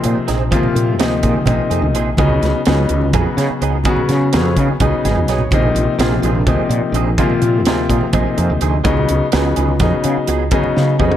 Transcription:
Already playing: grand piano C3 F3 A#3 C4
0.03 fretless electric bass A#2, clean electric guitar C4 D#4 G#4, closed hi-hat, low conga
0.16 muted fretless electric bass stroke, low conga
0.27 fretless electric bass A#1, clean electric guitar F3 C4 D#4 G#4, snare, closed hi-hat
0.51 grand piano C3 F3 A#3 F4, clean electric guitar F3 C4 D#4 G#4, kick, closed hi-hat, high conga
0.63 low conga
0.75 fretless electric bass A#2, closed hi-hat
0.87 low conga
0.99 fretless electric bass D2, grand piano C3 F3 A#3 D#4, clean electric guitar F3 C4 D#4 G#4, snare, closed hi-hat
1.23 fretless electric bass A#2, clean electric guitar C4 D#4 G#4, kick, closed hi-hat
1.34 high conga
1.46 fretless electric bass A#1, grand piano C3 F3 A#3 D#4, clean electric guitar F3 C4 D#4 G#4, kick, closed hi-hat, low conga
1.70 fretless electric bass F2, clean electric guitar C4 D#4 G#4, closed hi-hat, low conga
1.82 fretless electric bass D2, low conga
1.94 fretless electric bass A#1, clean electric guitar F3 C4 D#4 G#4, closed hi-hat
2.06 low conga
2.17 fretless electric bass C#2, grand piano C#3 F#3 B3 D#4, clean electric guitar F#3 B3 D#4 G#4, kick, closed hi-hat, high conga
2.29 low conga
2.42 fretless electric bass C#2, snare, closed hi-hat
2.54 low conga
2.66 fretless electric bass C#2, grand piano C#3 F#3 B3 D#4, clean electric guitar F#3 B3 D#4 G#4, snare, closed hi-hat
2.89 fretless electric bass C#2, closed hi-hat
3.01 high conga
3.13 fretless electric bass F2, grand piano C#3 F#3 B3 F#4, clean electric guitar F#3 B3 D#4 G#4, kick, closed hi-hat, low conga
3.37 fretless electric bass C#3, clean electric guitar B3 D#4 G#4, snare, closed hi-hat, low conga
3.49 muted fretless electric bass stroke, low conga
3.61 fretless electric bass C#2, clean electric guitar F#3 B3 D#4 G#4, closed hi-hat
3.72 low conga
3.84 grand piano C#3 F#3 B3 F#4, clean electric guitar F#3 B3 D#4 G#4, kick, closed hi-hat, high conga, low conga
3.96 low conga
4.09 fretless electric bass C#3, snare, closed hi-hat
4.21 low conga
4.33 fretless electric bass F2, grand piano C#3 F#3 B3 C#4, clean electric guitar F#3 B3 D#4 G#4, snare, closed hi-hat
4.45 low conga
4.57 fretless electric bass C#3, clean electric guitar B3 D#4 G#4, kick, closed hi-hat
4.68 high conga
4.80 fretless electric bass C#2, grand piano C#3 F#3 B3 D#4, clean electric guitar F#3 B3 D#4 G#4, kick, closed hi-hat, low conga
4.92 low conga
5.04 fretless electric bass G#1, clean electric guitar B3 D#4 G#4, grand piano G#5, snare, closed hi-hat, high conga
5.16 fretless electric bass F2, high conga
5.26 fretless electric bass B1, clean electric guitar F#3 B3 D#4 G#4, grand piano C#5, snare, closed hi-hat, low conga
5.39 low conga
5.51 fretless electric bass A#1, grand piano C3 F3 A#3 D#4, clean electric guitar F3 C4 D#4 G#4, kick, closed hi-hat, high conga
5.62 low conga
5.75 fretless electric bass A#1, closed hi-hat
5.98 fretless electric bass A#1, grand piano C3 F3 A#3 F4, clean electric guitar F3 C4 D#4 G#4, snare, closed hi-hat
6.22 fretless electric bass A#1, clean electric guitar C4 D#4 G#4, closed hi-hat
6.35 high conga
6.47 fretless electric bass D2, grand piano C3 F3 A#3 D#4, clean electric guitar F3 C4 D#4 G#4, kick, closed hi-hat, low conga
6.69 fretless electric bass A#2, closed hi-hat
6.81 muted fretless electric bass stroke
6.92 fretless electric bass A#1, clean electric guitar F3 C4 D#4 G#4, closed hi-hat
7.18 grand piano C3 F3 A#3 F4, clean electric guitar F3 C4 D#4 G#4, kick, closed hi-hat, high conga
7.30 low conga
7.42 fretless electric bass A#2, closed hi-hat
7.54 low conga
7.65 fretless electric bass D2, grand piano C3 F3 A#3 F4, clean electric guitar F3 C4 D#4 G#4, snare, closed hi-hat
7.89 fretless electric bass A#2, clean electric guitar C4 D#4 G#4, kick, closed hi-hat
8.01 high conga
8.13 fretless electric bass A#1, grand piano C3 F3 A#3 D#4, clean electric guitar F3 C4 D#4 G#4, kick, closed hi-hat, low conga
8.36 fretless electric bass F2, clean electric guitar C4 D#4 G#4, closed hi-hat, low conga
8.49 fretless electric bass D2, low conga
8.61 fretless electric bass D2, clean electric guitar F3 C4 D#4 G#4, closed hi-hat
8.73 low conga
8.84 fretless electric bass C#2, grand piano C#3 F#3 B3 D#4, clean electric guitar F#3 B3 D#4 G#4, kick, closed hi-hat, high conga
8.97 low conga
9.09 fretless electric bass C#2, closed hi-hat
9.21 low conga
9.32 fretless electric bass C#2, grand piano C#3 F#3 B3 D#4, clean electric guitar F#3 B3 D#4 G#4, snare, closed hi-hat
9.56 fretless electric bass C#2, clean electric guitar B3 D#4 G#4, closed hi-hat, low conga
9.68 high conga
9.80 fretless electric bass F2, grand piano C#3 F#3 B3 D#4, clean electric guitar F#3 B3 D#4 G#4, kick, snare, closed hi-hat, low conga
10.04 fretless electric bass C#3, clean electric guitar B3 D#4 G#4, closed hi-hat
10.17 muted fretless electric bass stroke, low conga
10.28 fretless electric bass C#2, clean electric guitar F#3 B3 D#4 G#4, closed hi-hat
10.51 grand piano C#3 F#3 B3 D#4, clean electric guitar F#3 B3 D#4 G#4, kick, closed hi-hat, high conga, low conga
10.64 low conga
10.76 fretless electric bass C#3, snare, low conga
10.88 low conga
10.99 fretless electric bass F2, grand piano C#3 F#3 B3 D#4, clean electric guitar F#3 B3 D#4 G#4, kick
11.12 mid tom

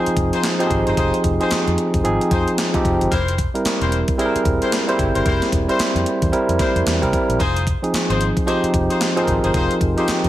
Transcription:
Already playing: tine electric piano F3 C4 D#4 G#4, horn section D#4 F4 G#4 C5
0.06 muted fingered electric bass stroke, closed hi-hat
0.16 fingered electric bass F1, kick, closed hi-hat
0.33 horn section D#4 F4 G#4 C5, closed hi-hat
0.43 snare, clap, closed hi-hat
0.59 tine electric piano F3 C4 D#4 G4, horn section D#4 F4 G#4 C5, closed hi-hat
0.67 fingered electric bass G#1, tine electric piano G#4, kick, closed hi-hat
0.87 fingered electric bass G1, horn section D#4 F4 G#4 C5, closed hi-hat
0.97 fingered electric bass F1, horn section D#4 F4 G#4 C5, kick, closed hi-hat
1.14 closed hi-hat
1.24 fingered electric bass F1, kick, closed hi-hat
1.40 tine electric piano F3 C4 D#4 G#4, horn section D#4 F4 G#4 C5, closed hi-hat
1.51 muted fingered electric bass stroke, snare, clap, closed hi-hat
1.67 fingered electric bass F2, closed hi-hat
1.78 closed hi-hat
1.94 fingered electric bass F1, kick, closed hi-hat
2.04 fingered electric bass G#1, tine electric piano F3 C4 D#4 G#4, closed hi-hat
2.21 closed hi-hat
2.31 fingered electric bass F2, horn section D#4 F4 G#4 C5, kick, closed hi-hat
2.48 closed hi-hat
2.58 snare, clap, closed hi-hat
2.74 tine electric piano F3 C4 D#4 G4, kick, closed hi-hat
2.85 fingered electric bass F1, kick, closed hi-hat
3.01 fingered electric bass G1, closed hi-hat
3.11 fingered electric bass F1, horn section E4 G4 A#4 C5, kick, closed hi-hat
3.28 closed hi-hat
3.38 kick, closed hi-hat
3.54 tine electric piano G3 C4 E4 A#4, closed hi-hat
3.65 muted fingered electric bass stroke, snare, clap, closed hi-hat
3.81 fingered electric bass E1, horn section E4 G4 A#4 C5, closed hi-hat
3.92 closed hi-hat
4.08 kick, closed hi-hat
4.18 tine electric piano G3 C4 E4 G#4, horn section E4 G4 A#4 C5, closed hi-hat
4.26 tine electric piano A#4
4.35 muted fingered electric bass stroke, closed hi-hat
4.45 fingered electric bass E1, kick, closed hi-hat
4.62 horn section E4 G4 A#4 C5, closed hi-hat
4.72 snare, clap, closed hi-hat
4.88 tine electric piano G3 C4 E4 C5, horn section E4 G4 A#4 C5, closed hi-hat
4.99 fingered electric bass G1, kick, closed hi-hat
5.15 fingered electric bass G1, horn section E4 G4 A#4 C5, closed hi-hat
5.25 fingered electric bass F1, horn section E4 G4 A#4 C5, kick, closed hi-hat
5.42 snare, closed hi-hat
5.52 fingered electric bass E1, kick, closed hi-hat
5.68 tine electric piano G3 C4 E4 C5, horn section E4 G4 A#4 C5, closed hi-hat
5.79 muted fingered electric bass stroke, snare, clap, closed hi-hat
5.95 fingered electric bass F2, closed hi-hat
6.06 closed hi-hat
6.22 fingered electric bass E2, kick, closed hi-hat
6.32 tine electric piano G3 C4 E4 A#4, closed hi-hat
6.49 fingered electric bass F2, closed hi-hat
6.59 horn section E4 G4 A#4 C5, kick, snare, closed hi-hat
6.75 fingered electric bass F2, closed hi-hat
6.86 fingered electric bass E2, snare, clap, closed hi-hat
7.02 fingered electric bass C2, tine electric piano G3 C4 E4 A#4, kick, closed hi-hat
7.13 kick, closed hi-hat
7.29 fingered electric bass A#1, closed hi-hat
7.39 fingered electric bass F1, horn section D#4 F4 G#4 C5, kick, closed hi-hat
7.56 closed hi-hat
7.67 kick, closed hi-hat
7.82 tine electric piano F3 C4 D#4 G#4, closed hi-hat
7.93 muted fingered electric bass stroke, snare, clap, closed hi-hat
8.09 fingered electric bass G#1, horn section D#4 F4 G#4 C5, closed hi-hat
8.21 closed hi-hat
8.37 kick, closed hi-hat
8.47 tine electric piano F3 C4 D#4 G4, horn section D#4 F4 G#4 C5, closed hi-hat
8.63 muted fingered electric bass stroke, closed hi-hat
8.74 fingered electric bass F1, kick, closed hi-hat
8.90 horn section D#4 F4 G#4 C5, closed hi-hat
9.01 snare, clap, closed hi-hat
9.16 tine electric piano F3 C4 D#4 G#4, horn section D#4 F4 G#4 C5, closed hi-hat
9.24 fingered electric bass G#1, tine electric piano A#4, kick
9.28 closed hi-hat
9.43 fingered electric bass G1, horn section D#4 F4 G#4 C5, closed hi-hat
9.54 horn section D#4 F4 G#4 C5, kick, closed hi-hat
9.71 closed hi-hat
9.81 fingered electric bass F1, kick, closed hi-hat
9.97 tine electric piano F3 C4 D#4 G4, horn section D#4 F4 G#4 C5, closed hi-hat
10.08 muted fingered electric bass stroke, snare, clap, closed hi-hat
10.24 fingered electric bass F2, closed hi-hat

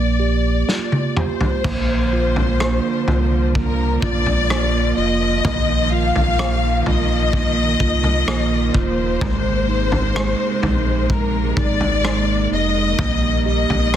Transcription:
Already playing: sub bass A#1, tine electric piano A#3, violin section D5
0.19 tine electric piano G4
0.68 tine electric piano F4, snare
0.92 high tom
1.16 tine electric piano G4, violin section C5, mid tom
1.41 floor tom
1.64 sub bass A#1, string section D3 F3 A#3, tine electric piano A#3, kick, floor tom, crash
2.13 tine electric piano F4
2.36 floor tom
2.60 tine electric piano A#3, cross-stick
3.07 sub bass C2, tine electric piano F4, floor tom
3.55 tine electric piano A#3, violin section A#4, kick
4.02 sub bass A#1, tine electric piano F4, violin section D5, kick
4.26 floor tom
4.50 tine electric piano A#3, cross-stick
4.97 sub bass F1, tine electric piano F4, violin section D#5
5.45 sub bass A#1, string section D#3, tine electric piano A#3, kick, floor tom
5.92 tine electric piano F4, violin section F5
6.16 sub bass A#1, floor tom
6.39 tine electric piano A#3, cross-stick
6.86 sub bass A#1, tine electric piano F4, violin section D#5, floor tom
7.33 tine electric piano A#3, kick, floor tom
7.80 sub bass C2, tine electric piano F4, kick
8.04 floor tom
8.27 sub bass A#1, tine electric piano A#3, cross-stick
8.74 sub bass D#1, tine electric piano F4, violin section C5, kick
9.21 sub bass G#1, string section C3 G#3, tine electric piano G#3, kick, floor tom
9.69 tine electric piano D#4
9.92 floor tom
10.16 tine electric piano G#3, cross-stick
10.63 sub bass A#1, tine electric piano D#4, floor tom
11.10 tine electric piano G#3, violin section A#4, kick
11.57 sub bass G#1, tine electric piano D#4, violin section D5, kick
11.81 floor tom
12.04 tine electric piano G#3, cross-stick
12.51 sub bass F1, tine electric piano D#4, violin section D#5
12.98 sub bass A#1, string section D#3 G3, tine electric piano A#3, kick, floor tom
13.46 tine electric piano G4, violin section D#5
13.70 sub bass A#1, floor tom
13.93 tine electric piano A#3

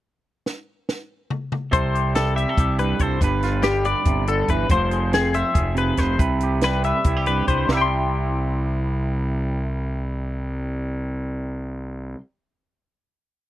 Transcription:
0.46 snare
0.89 snare
1.30 mid tom
1.52 mid tom
1.71 fingered electric bass C2, clean electric guitar C3 A4 C5, kick, closed hi-hat
1.95 clean electric guitar G4, closed hi-hat
2.15 clean electric guitar G3 A4, snare, closed hi-hat
2.36 clean electric guitar G4 E5, closed hi-hat
2.49 clean electric guitar A4
2.57 fingered electric bass C2, clean electric guitar G4, kick, closed hi-hat
2.79 clean electric guitar G2 B4, closed hi-hat
2.99 fingered electric bass C2, clean electric guitar A4 C5, kick, closed hi-hat
3.21 fingered electric bass G1, clean electric guitar G2 B4, kick, closed hi-hat
3.43 clean electric guitar F4, snare, closed hi-hat
3.63 clean electric guitar G3 G4, snare, closed hi-hat
3.85 clean electric guitar B4 D5, closed hi-hat
4.05 fingered electric bass G1, clean electric guitar C3, kick, closed hi-hat
4.27 clean electric guitar D3 A4, closed hi-hat
4.48 fingered electric bass G1, clean electric guitar E3 B4, kick, closed hi-hat
4.70 fingered electric bass F1, clean electric guitar F3 C5, kick, closed hi-hat
4.91 clean electric guitar G#4, closed hi-hat
5.13 clean electric guitar C4 G#4, snare, closed hi-hat
5.34 clean electric guitar C5 E5, closed hi-hat
5.54 fingered electric bass F1, clean electric guitar G#4, kick, closed hi-hat
5.75 clean electric guitar C3 B4, closed hi-hat
5.97 fingered electric bass F1, clean electric guitar B4 C5, kick, snare, closed hi-hat
6.19 fingered electric bass C2, clean electric guitar C3 B4, kick, closed hi-hat
6.41 clean electric guitar G4, closed hi-hat
6.61 clean electric guitar G3 B4, snare, closed hi-hat
6.84 clean electric guitar B4 E5, closed hi-hat
7.04 fingered electric bass C2, clean electric guitar E4, kick, closed hi-hat
7.17 clean electric guitar G4
7.26 clean electric guitar G2 B4, closed hi-hat
7.47 fingered electric bass C2, clean electric guitar B4 C5, kick, closed hi-hat
7.68 fingered electric bass C2, clean electric guitar C3 G3, snare
7.72 clean electric guitar E4 G4 E5
7.77 clean electric guitar G5
7.82 clean electric guitar C6

